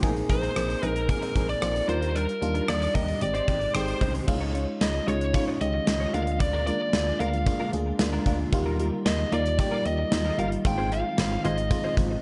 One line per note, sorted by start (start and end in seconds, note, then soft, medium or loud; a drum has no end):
0.00 0.22 A#1 loud
0.00 0.10 D#3 medium
0.00 0.20 G#3 medium
0.00 0.24 A#3 loud
0.00 0.10 C4 medium
0.00 0.24 C4 loud
0.00 0.16 C4 medium
0.00 0.24 D#4 loud
0.00 0.15 D#4 medium
0.00 0.10 G4 loud
0.00 0.24 G#4 loud
0.00 0.15 A#4 medium
0.00 kick loud
0.00 closed hi-hat medium
0.16 muted clean electric guitar stroke soft
0.16 closed hi-hat soft
0.29 0.49 A#1 medium
0.29 0.50 A#3 medium
0.29 0.50 C4 medium
0.29 0.51 D#4 medium
0.29 0.51 G#4 loud
0.29 0.90 C5 medium
0.29 muted clean electric guitar stroke soft
0.29 kick medium
0.29 closed hi-hat medium
0.42 0.54 G#3 medium
0.42 0.55 C4 soft
0.42 0.55 D#4 medium
0.42 0.55 A#4 medium
0.42 closed hi-hat medium
0.55 0.75 A#1 loud
0.55 0.77 A#3 medium
0.55 0.77 C4 medium
0.55 0.77 D#4 medium
0.55 0.77 G#4 medium
0.55 muted clean electric guitar stroke soft
0.55 cross-stick loud
0.55 closed hi-hat medium
0.69 muted clean electric guitar stroke soft
0.69 closed hi-hat soft
0.82 1.11 A#1 medium
0.82 0.95 G#3 medium
0.82 1.03 A#3 medium
0.82 0.94 C4 medium
0.82 1.03 C4 medium
0.82 0.94 D#4 medium
0.82 1.04 D#4 medium
0.82 1.04 G#4 medium
0.82 0.94 A#4 medium
0.82 closed hi-hat medium
0.90 1.09 A#4 medium
0.95 1.07 G#3 medium
0.95 1.07 C4 medium
0.95 1.08 D#4 medium
0.95 1.08 A#4 medium
0.95 closed hi-hat medium
1.08 1.20 F3 medium
1.08 1.30 A#3 medium
1.08 1.30 C4 medium
1.08 1.20 D#4 medium
1.08 1.30 D#4 medium
1.08 1.20 G#4 medium
1.08 1.30 G#4 medium
1.08 1.46 A#4 medium
1.08 muted clean electric guitar stroke soft
1.08 kick medium
1.08 closed hi-hat medium
1.21 1.33 G#3 medium
1.21 1.34 C4 medium
1.21 1.34 D#4 medium
1.21 1.35 A#4 medium
1.21 closed hi-hat medium
1.35 1.55 A#1 medium
1.35 1.48 G#3 medium
1.35 1.56 A#3 medium
1.35 1.47 C4 medium
1.35 1.56 C4 medium
1.35 1.47 D#4 medium
1.35 1.57 D#4 medium
1.35 1.57 G#4 medium
1.35 1.47 A#4 medium
1.35 kick medium
1.35 closed hi-hat medium
1.48 1.89 D5 loud
1.48 muted clean electric guitar stroke soft
1.48 closed hi-hat soft
1.61 1.81 A#1 medium
1.61 1.82 A#3 medium
1.61 1.83 C4 medium
1.61 1.83 D#4 medium
1.61 1.83 F4 loud
1.61 muted clean electric guitar stroke soft
1.61 cross-stick loud
1.61 closed hi-hat medium
1.75 muted clean electric guitar stroke soft
1.75 closed hi-hat soft
1.88 2.27 D#2 medium
1.88 2.01 G3 medium
1.88 2.31 G3 medium
1.88 2.12 G3 medium
1.88 2.01 D4 medium
1.88 2.31 D4 medium
1.88 2.31 D#4 medium
1.88 2.00 F4 medium
1.88 2.11 F4 medium
1.88 2.32 F4 medium
1.88 2.00 A#4 medium
1.88 2.12 A#4 loud
1.88 2.16 C5 medium
1.88 closed hi-hat medium
2.01 2.13 G3 medium
2.01 2.14 D4 medium
2.01 2.14 F4 medium
2.01 2.14 A#4 medium
2.01 closed hi-hat medium
2.15 2.32 G3 medium
2.15 2.27 D4 medium
2.15 2.27 F4 medium
2.15 2.70 A#4 medium
2.15 2.26 A#4 medium
2.15 closed hi-hat medium
2.28 muted clean electric guitar stroke soft
2.28 closed hi-hat soft
2.41 2.61 D#2 medium
2.41 2.63 G3 medium
2.41 2.63 D4 medium
2.41 2.63 D#4 medium
2.41 2.63 F4 medium
2.41 muted clean electric guitar stroke soft
2.41 closed hi-hat medium
2.54 2.67 G3 soft
2.54 2.67 D4 soft
2.54 2.67 F4 soft
2.54 2.67 A#4 medium
2.54 closed hi-hat medium
2.68 2.88 D#2 loud
2.68 2.89 G3 medium
2.68 2.89 D4 medium
2.68 2.89 D#4 medium
2.68 2.90 F4 medium
2.68 2.95 D5 medium
2.68 muted clean electric guitar stroke soft
2.68 cross-stick loud
2.68 closed hi-hat medium
2.81 muted clean electric guitar stroke soft
2.81 closed hi-hat soft
2.94 3.14 D#2 loud
2.94 3.07 G3 medium
2.94 3.16 G3 medium
2.94 3.07 D4 medium
2.94 3.16 D4 medium
2.94 3.16 D#4 medium
2.94 3.07 F4 medium
2.94 3.16 G4 medium
2.94 3.06 A#4 medium
2.94 3.22 D#5 medium
2.94 kick medium
2.94 closed hi-hat medium
3.07 3.20 G3 soft
3.07 3.21 D4 medium
3.07 3.21 F4 medium
3.07 3.21 A#4 medium
3.07 closed hi-hat soft
3.20 3.41 G#1 loud
3.20 3.33 D#3 medium
3.20 3.42 G#3 medium
3.20 3.42 C4 medium
3.20 3.33 C4 medium
3.20 3.42 D#4 medium
3.20 3.42 G4 medium
3.20 3.33 G4 medium
3.20 3.74 D5 medium
3.20 muted clean electric guitar stroke soft
3.20 closed hi-hat medium
3.34 3.46 G#3 medium
3.34 3.46 D#4 medium
3.34 3.47 G4 medium
3.34 3.47 C5 medium
3.34 closed hi-hat medium
3.47 3.67 G#1 medium
3.47 3.61 G#3 medium
3.47 3.69 G#3 medium
3.47 3.69 C4 medium
3.47 3.60 D#4 medium
3.47 3.69 D#4 medium
3.47 3.60 G4 medium
3.47 3.69 G4 medium
3.47 3.60 C5 medium
3.47 kick medium
3.47 closed hi-hat medium
3.61 muted clean electric guitar stroke soft
3.61 closed hi-hat soft
3.74 3.94 G#1 medium
3.74 3.95 G#3 medium
3.74 3.96 C4 medium
3.74 3.96 D#4 medium
3.74 3.96 G4 loud
3.74 4.12 C5 medium
3.74 muted clean electric guitar stroke soft
3.74 cross-stick loud
3.74 closed hi-hat medium
3.88 muted clean electric guitar stroke soft
3.88 closed hi-hat soft
4.00 4.20 C2 medium
4.00 4.35 D#3 medium
4.00 4.22 G#3 medium
4.00 4.14 G#3 medium
4.00 4.22 C4 medium
4.00 4.35 C#4 medium
4.00 4.14 D#4 medium
4.00 4.22 D#4 medium
4.00 4.35 G4 loud
4.00 4.13 G4 medium
4.00 4.22 G4 medium
4.00 4.13 C5 medium
4.00 kick medium
4.00 closed hi-hat medium
4.14 4.27 G#3 soft
4.14 4.27 D#4 medium
4.14 4.28 G4 soft
4.14 4.27 C5 medium
4.14 closed hi-hat medium
4.27 4.66 C#2 loud
4.27 6.12 D#3 medium
4.27 4.48 G#3 loud
4.27 8.48 G#3 medium
4.27 4.49 C#4 loud
4.27 6.12 C#4 medium
4.27 4.49 D#4 loud
4.27 8.48 F4 medium
4.27 4.49 F4 loud
4.27 kick loud
4.27 crash medium
4.40 4.53 G#3 medium
4.40 4.53 D#4 medium
4.40 4.53 F4 medium
4.40 4.54 C#5 medium
4.53 4.75 G#3 medium
4.53 4.67 G#3 medium
4.53 4.75 C#4 medium
4.53 4.67 D#4 medium
4.53 4.75 D#4 medium
4.53 4.66 F4 medium
4.53 4.75 F4 medium
4.53 4.66 C#5 medium
4.53 closed hi-hat medium
4.67 muted clean electric guitar stroke soft
4.81 5.00 C#2 medium
4.81 5.02 G#3 medium
4.81 5.02 C#4 medium
4.81 5.02 D#4 medium
4.81 5.02 F4 medium
4.81 5.07 D#5 medium
4.81 muted clean electric guitar stroke soft
4.81 snare loud
4.81 closed hi-hat medium
4.94 muted clean electric guitar stroke soft
5.07 5.36 C#2 loud
5.07 5.28 G#3 medium
5.07 5.24 G#3 medium
5.07 5.28 C#4 medium
5.07 5.28 D#4 medium
5.07 5.20 D#4 medium
5.07 5.20 F4 medium
5.07 5.29 F4 medium
5.07 5.34 C#5 medium
5.07 5.20 C#5 medium
5.07 closed hi-hat medium
5.21 muted clean electric guitar stroke soft
5.21 closed hi-hat medium
5.33 5.54 G#3 medium
5.33 5.54 C#4 medium
5.33 5.55 D#4 medium
5.33 5.55 F4 loud
5.33 5.42 C#5 medium
5.33 muted clean electric guitar stroke soft
5.33 kick medium
5.33 closed hi-hat medium
5.48 5.59 G#3 medium
5.48 5.60 D#4 medium
5.48 5.60 F4 medium
5.48 5.60 C#5 medium
5.60 5.80 C#2 medium
5.60 5.81 G#3 medium
5.60 5.81 C#4 medium
5.60 5.82 D#4 medium
5.60 5.82 G4 medium
5.60 6.14 D#5 medium
5.60 muted clean electric guitar stroke soft
5.60 closed hi-hat medium
5.74 muted clean electric guitar stroke soft
5.86 6.06 C#2 medium
5.86 6.07 G#3 medium
5.86 6.08 C#4 medium
5.86 6.08 D#4 medium
5.86 6.08 F4 medium
5.86 muted clean electric guitar stroke soft
5.86 snare loud
5.86 closed hi-hat medium
6.00 6.12 G#3 soft
6.00 6.13 D#4 medium
6.00 6.13 F4 medium
6.00 6.13 C#5 medium
6.13 6.71 D2 medium
6.13 8.50 D3 medium
6.13 6.56 G#3 medium
6.13 6.30 G#3 medium
6.13 6.56 A#3 medium
6.13 10.61 A#3 medium
6.13 6.26 D4 medium
6.13 6.56 D4 medium
6.13 6.26 F4 medium
6.13 6.56 F4 medium
6.13 6.26 A#4 medium
6.13 6.40 F5 loud
6.13 closed hi-hat medium
6.27 muted clean electric guitar stroke soft
6.27 closed hi-hat medium
6.40 6.66 D5 loud
6.40 muted clean electric guitar stroke soft
6.40 kick loud
6.40 closed hi-hat medium
6.53 6.65 G#3 medium
6.53 6.66 D4 medium
6.53 6.66 F4 medium
6.53 6.66 A#4 medium
6.66 6.87 G#3 medium
6.66 6.80 G#3 medium
6.66 6.87 A#3 medium
6.66 6.79 D4 medium
6.66 6.88 D4 medium
6.66 6.88 F4 medium
6.66 6.79 F4 medium
6.66 6.79 A#4 medium
6.66 7.20 D5 medium
6.66 closed hi-hat medium
6.80 muted clean electric guitar stroke soft
6.93 7.12 D2 loud
6.93 7.14 G#3 medium
6.93 7.14 A#3 medium
6.93 7.14 D4 medium
6.93 7.15 F4 medium
6.93 muted clean electric guitar stroke soft
6.93 snare loud
6.93 closed hi-hat medium
7.07 muted clean electric guitar stroke soft
7.20 7.49 D2 loud
7.20 7.41 G#3 medium
7.20 7.36 G#3 medium
7.20 7.41 A#3 medium
7.20 7.33 D4 medium
7.20 7.41 D4 medium
7.20 7.32 F4 medium
7.20 7.41 F4 medium
7.20 7.32 A#4 medium
7.20 7.69 F5 medium
7.20 closed hi-hat medium
7.33 muted clean electric guitar stroke soft
7.33 closed hi-hat soft
7.46 7.67 G#3 medium
7.46 7.67 A#3 medium
7.46 7.67 D4 medium
7.46 7.68 F4 loud
7.46 muted clean electric guitar stroke soft
7.46 kick loud
7.46 closed hi-hat medium
7.60 7.72 G#3 medium
7.60 7.72 D4 medium
7.60 7.72 F4 medium
7.60 7.72 A#4 medium
7.73 7.92 D2 medium
7.73 7.94 G#3 medium
7.73 7.94 A#3 medium
7.73 7.94 D4 medium
7.73 7.94 G#4 medium
7.73 muted clean electric guitar stroke soft
7.73 closed hi-hat medium
7.86 muted clean electric guitar stroke soft
7.99 8.19 D2 loud
7.99 8.20 G#3 medium
7.99 8.21 A#3 medium
7.99 8.21 D4 medium
7.99 8.21 F4 medium
7.99 muted clean electric guitar stroke soft
7.99 snare loud
7.99 closed hi-hat loud
8.13 8.25 G#3 medium
8.13 8.25 D4 medium
8.13 8.25 F4 medium
8.13 8.26 A#4 medium
8.26 8.45 D2 medium
8.26 8.47 G#3 medium
8.26 8.43 G#3 medium
8.26 8.47 A#3 medium
8.26 8.39 D4 medium
8.26 8.47 D4 medium
8.26 8.38 F4 medium
8.26 8.47 F4 medium
8.26 8.38 A#4 medium
8.26 kick medium
8.26 closed hi-hat medium
8.39 muted clean electric guitar stroke soft
8.52 8.91 D#2 loud
8.52 12.22 D#3 medium
8.52 8.73 G3 loud
8.52 10.63 G3 medium
8.52 8.74 A#3 loud
8.52 8.74 D#4 loud
8.52 10.63 F4 medium
8.52 8.74 F4 loud
8.52 muted clean electric guitar stroke soft
8.52 kick loud
8.52 closed hi-hat medium
8.66 8.78 G3 medium
8.66 8.78 A#3 medium
8.66 8.78 F4 medium
8.66 8.79 A#4 medium
8.79 8.92 G3 medium
8.79 9.00 G3 medium
8.79 8.92 A#3 medium
8.79 9.00 A#3 medium
8.79 9.00 D#4 medium
8.79 8.91 F4 medium
8.79 9.01 F4 medium
8.79 8.91 A#4 medium
8.79 closed hi-hat medium
8.92 muted clean electric guitar stroke soft
9.05 9.25 D#2 loud
9.05 9.26 G3 medium
9.05 9.27 A#3 medium
9.05 9.27 D#4 medium
9.05 9.27 F4 medium
9.05 9.33 D#5 medium
9.05 muted clean electric guitar stroke soft
9.05 snare loud
9.05 closed hi-hat medium
9.19 muted clean electric guitar stroke soft
9.31 9.61 D#2 loud
9.31 9.53 G3 medium
9.31 9.49 G3 medium
9.31 9.53 A#3 medium
9.31 9.44 A#3 medium
9.31 9.53 D#4 medium
9.31 9.44 F4 medium
9.31 9.53 F4 medium
9.31 9.44 A#4 loud
9.31 9.58 D5 medium
9.31 closed hi-hat medium
9.45 muted clean electric guitar stroke medium
9.45 closed hi-hat medium
9.58 9.79 G3 medium
9.58 9.79 A#3 medium
9.58 9.80 D#4 medium
9.58 9.80 G4 loud
9.58 9.86 D5 medium
9.58 muted clean electric guitar stroke soft
9.58 kick loud
9.58 closed hi-hat loud
9.71 9.84 G3 medium
9.71 9.84 A#3 medium
9.71 9.85 F4 medium
9.71 9.85 A#4 medium
9.85 10.05 D#2 medium
9.85 10.06 G3 medium
9.85 10.06 A#3 medium
9.85 10.06 D#4 medium
9.85 10.07 G4 medium
9.85 10.39 D#5 medium
9.85 closed hi-hat medium
9.98 muted clean electric guitar stroke soft
10.11 10.31 D#2 loud
10.11 10.32 G3 medium
10.11 10.33 A#3 medium
10.11 10.33 D#4 medium
10.11 10.33 F4 medium
10.11 muted clean electric guitar stroke medium
10.11 snare loud
10.11 closed hi-hat medium
10.25 10.37 G3 soft
10.25 10.37 A#3 medium
10.25 10.38 F4 medium
10.25 10.38 A#4 medium
10.38 10.57 G1 medium
10.38 10.55 G3 medium
10.38 10.59 G3 medium
10.38 10.51 A#3 medium
10.38 10.59 A#3 medium
10.38 10.59 D#4 medium
10.38 10.51 F4 medium
10.38 10.60 F4 medium
10.38 10.51 A#4 medium
10.38 10.47 F5 loud
10.38 closed hi-hat medium
10.52 muted clean electric guitar stroke soft
10.52 closed hi-hat medium
10.65 11.03 G#1 loud
10.65 10.86 G#3 medium
10.65 12.22 G#3 medium
10.65 12.22 C4 medium
10.65 10.86 C4 medium
10.65 10.86 D#4 medium
10.65 12.22 F4 medium
10.65 10.86 F4 loud
10.65 10.93 G5 loud
10.65 muted clean electric guitar stroke soft
10.65 kick loud
10.65 closed hi-hat loud
10.78 10.90 C4 medium
10.78 10.90 F4 medium
10.78 10.91 G#4 medium
10.78 10.91 C5 medium
10.91 11.12 G#3 medium
10.91 11.04 C4 medium
10.91 11.12 C4 medium
10.91 11.13 D#4 medium
10.91 11.04 F4 medium
10.91 11.13 F4 medium
10.91 11.04 G#4 medium
10.91 11.03 C5 medium
10.91 11.41 F5 loud
10.91 closed hi-hat medium
11.05 muted clean electric guitar stroke soft
11.18 11.37 G#1 loud
11.18 11.39 G#3 medium
11.18 11.39 C4 medium
11.18 11.39 D#4 medium
11.18 11.39 F4 medium
11.18 muted clean electric guitar stroke soft
11.18 snare loud
11.18 closed hi-hat medium
11.31 muted clean electric guitar stroke soft
11.44 11.73 G#1 loud
11.44 11.65 G#3 medium
11.44 11.61 C4 medium
11.44 11.65 C4 medium
11.44 11.66 D#4 medium
11.44 11.57 F4 medium
11.44 11.66 F4 medium
11.44 11.57 G#4 medium
11.44 11.56 C5 medium
11.44 11.94 D#5 medium
11.44 closed hi-hat medium
11.58 muted clean electric guitar stroke medium
11.58 closed hi-hat medium
11.70 11.92 G#3 medium
11.70 11.92 C4 medium
11.70 11.92 D#4 medium
11.70 11.92 F4 loud
11.70 muted clean electric guitar stroke soft
11.70 kick loud
11.70 closed hi-hat loud
11.84 11.96 C4 medium
11.84 11.96 F4 medium
11.84 11.96 G#4 medium
11.84 11.97 C5 medium
11.97 12.16 G#1 medium
11.97 12.18 G#3 medium
11.97 12.18 C4 medium
11.97 12.19 D#4 medium
11.97 12.19 F4 medium
11.97 muted clean electric guitar stroke soft
11.97 kick medium
11.97 closed hi-hat medium
12.11 muted clean electric guitar stroke soft